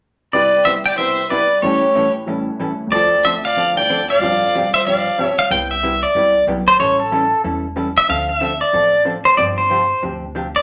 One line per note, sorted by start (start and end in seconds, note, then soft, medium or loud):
0.33 1.63 C3 medium
0.33 0.54 C3 medium
0.33 1.63 G3 medium
0.33 0.54 G3 soft
0.33 0.54 B3 soft
0.33 1.63 D4 soft
0.33 0.55 E4 soft
0.33 1.63 E4 medium
0.33 0.55 G4 soft
0.33 1.62 G4 medium
0.33 0.64 B4 medium
0.33 0.67 D5 medium
0.65 0.77 C3 medium
0.65 0.77 G3 medium
0.65 0.77 B3 medium
0.65 0.78 E4 medium
0.65 0.78 G4 medium
0.65 0.75 C5 medium
0.65 0.71 E5 medium
0.86 0.99 D5 medium
0.86 0.97 G5 medium
0.98 1.19 C3 soft
0.98 1.19 G3 soft
0.98 1.19 B3 medium
0.98 1.19 E4 medium
0.98 1.19 G4 medium
0.98 1.29 C5 medium
0.98 1.31 E5 medium
1.30 1.42 C3 medium
1.30 1.42 G3 medium
1.30 1.42 B3 medium
1.30 1.42 E4 medium
1.30 1.42 G4 medium
1.30 1.60 B4 medium
1.30 1.64 D5 medium
1.62 2.92 A2 medium
1.62 1.84 A2 soft
1.62 2.92 E3 medium
1.62 1.84 E3 medium
1.62 1.84 G3 medium
1.62 2.92 C#4 medium
1.62 1.84 C#4 medium
1.62 1.84 E4 medium
1.62 2.11 G4 medium
1.62 2.92 G4 medium
1.62 1.84 A4 medium
1.62 2.92 B4 medium
1.62 2.11 C#5 medium
1.95 2.06 A2 medium
1.95 2.06 E3 medium
1.95 2.07 G3 medium
1.95 2.07 C#4 medium
1.95 2.07 E4 medium
1.95 2.07 A4 medium
2.26 2.48 A2 medium
2.26 2.48 E3 medium
2.26 2.91 G3 soft
2.26 2.48 G3 soft
2.26 2.48 C#4 medium
2.26 2.92 E4 soft
2.26 2.48 E4 medium
2.26 2.92 A4 soft
2.26 2.49 A4 soft
2.26 2.93 C#5 medium
2.59 2.71 A2 medium
2.59 2.71 E3 medium
2.59 2.71 G3 medium
2.59 2.71 C#4 medium
2.59 2.71 E4 medium
2.59 2.71 A4 medium
2.87 4.19 D2 soft
2.87 3.74 D3 soft
2.92 3.13 D3 medium
2.92 3.13 F3 medium
2.92 4.21 C4 soft
2.92 3.13 C4 medium
2.92 3.13 D4 medium
2.92 4.20 F4 soft
2.92 3.13 A4 medium
2.92 3.23 A4 medium
2.92 3.25 D5 medium
2.97 4.22 C5 medium
3.24 3.35 D3 medium
3.24 3.36 F3 medium
3.24 3.36 C4 medium
3.24 3.36 D4 medium
3.24 3.36 A4 medium
3.24 3.34 C5 medium
3.24 3.30 E5 medium
3.45 3.75 D5 medium
3.45 3.77 F5 medium
3.56 3.77 D3 soft
3.56 3.78 F3 medium
3.56 3.78 C4 medium
3.56 3.78 D4 medium
3.56 3.78 A4 medium
3.75 4.18 D3 soft
3.75 4.21 D4 soft
3.75 4.22 E4 soft
3.75 4.21 A4 medium
3.75 4.07 D5 medium
3.75 4.10 G5 loud
3.89 4.00 D3 medium
3.89 4.00 F3 medium
3.89 4.01 C4 medium
3.89 4.01 D4 medium
3.89 4.01 A4 medium
4.10 4.70 D5 loud
4.10 4.74 F5 loud
4.19 5.49 G2 medium
4.19 4.42 G2 medium
4.19 4.43 C3 medium
4.19 5.50 D3 soft
4.19 4.43 F3 medium
4.19 4.43 C4 medium
4.19 5.50 F4 soft
4.19 5.51 A4 soft
4.23 4.43 D4 medium
4.23 4.43 G4 medium
4.23 5.52 C5 medium
4.55 4.65 G2 medium
4.55 4.65 C3 medium
4.55 4.66 F3 medium
4.55 4.66 C4 medium
4.55 4.66 D4 medium
4.55 4.66 G4 medium
4.74 4.86 C5 medium
4.74 4.86 E5 medium
4.86 5.07 G2 soft
4.86 5.07 C3 soft
4.86 5.07 F3 soft
4.86 5.07 C4 medium
4.86 5.07 D4 medium
4.86 5.07 G4 medium
4.86 5.23 D5 medium
4.86 5.23 F5 medium
5.18 5.29 G2 medium
5.18 5.30 C3 medium
5.18 5.30 F3 medium
5.18 5.30 C4 medium
5.18 5.30 D4 medium
5.18 5.30 G4 medium
5.23 5.35 C#5 medium
5.23 5.35 E5 medium
5.39 5.51 F5 loud
5.51 6.02 C2 medium
5.51 5.71 C3 medium
5.51 5.71 G3 medium
5.51 5.72 B3 medium
5.51 5.72 E4 soft
5.51 5.72 G4 medium
5.51 5.70 G5 medium
5.71 6.04 E5 medium
5.83 5.94 C3 medium
5.83 5.94 G3 medium
5.83 5.94 B3 medium
5.83 5.94 E4 medium
5.83 5.95 G4 medium
6.03 6.44 D5 medium
6.15 6.42 C2 medium
6.15 6.36 C3 medium
6.15 6.36 G3 soft
6.15 6.36 B3 soft
6.15 6.36 E4 medium
6.15 6.36 G4 soft
6.47 6.74 B1 medium
6.47 6.59 C3 medium
6.47 6.59 G3 medium
6.47 6.59 B3 medium
6.47 6.59 E4 medium
6.47 6.59 G4 medium
6.68 6.79 C5 medium
6.80 7.31 A1 medium
6.80 7.00 E3 soft
6.80 7.00 G3 medium
6.80 7.00 C#4 medium
6.80 7.01 E4 medium
6.80 7.01 A4 medium
6.80 7.00 C#5 medium
7.00 7.41 A4 medium
7.12 7.23 E3 medium
7.12 7.23 G3 medium
7.12 7.23 C#4 medium
7.12 7.23 E4 medium
7.12 7.23 A4 medium
7.44 7.96 E1 medium
7.44 7.65 E3 soft
7.44 7.65 G3 soft
7.44 7.65 C#4 medium
7.44 7.65 E4 medium
7.44 7.65 A4 medium
7.76 7.87 E3 medium
7.76 7.87 G3 medium
7.76 7.88 C#4 medium
7.76 7.88 E4 medium
7.76 7.88 A4 medium
7.98 8.08 E5 medium
8.09 8.60 D2 medium
8.09 8.29 D3 medium
8.09 8.30 F3 soft
8.09 8.30 C4 medium
8.09 8.30 D4 medium
8.09 8.30 A4 medium
8.09 8.29 F5 loud
8.29 8.61 E5 medium
8.41 8.52 D3 medium
8.41 8.52 F3 medium
8.41 8.52 C4 medium
8.41 8.52 D4 medium
8.41 8.53 A4 medium
8.61 9.02 D5 medium
8.73 9.25 A1 medium
8.73 8.94 D3 medium
8.73 8.94 F3 soft
8.73 8.94 C4 soft
8.73 8.94 D4 medium
8.73 8.94 A4 medium
9.05 9.16 D3 medium
9.05 9.17 F3 medium
9.05 9.17 C4 medium
9.05 9.17 D4 medium
9.05 9.17 A4 medium
9.25 9.37 C5 medium
9.37 9.90 G1 medium
9.37 9.58 C3 soft
9.37 9.59 F3 medium
9.37 9.59 C4 medium
9.37 9.59 D4 medium
9.37 9.59 G4 medium
9.37 9.43 D5 medium
9.58 10.02 C5 medium
9.70 9.81 C3 medium
9.70 9.81 F3 medium
9.70 9.82 C4 medium
9.70 9.82 D4 medium
9.70 9.82 G4 medium
10.02 10.54 D2 medium
10.02 10.23 C3 soft
10.02 10.23 F3 soft
10.02 10.24 C4 medium
10.02 10.24 D4 medium
10.02 10.24 G4 medium
10.35 10.46 C3 medium
10.35 10.46 F3 medium
10.35 10.46 C4 medium
10.35 10.46 D4 medium
10.35 10.47 G4 medium
10.56 10.62 D5 loud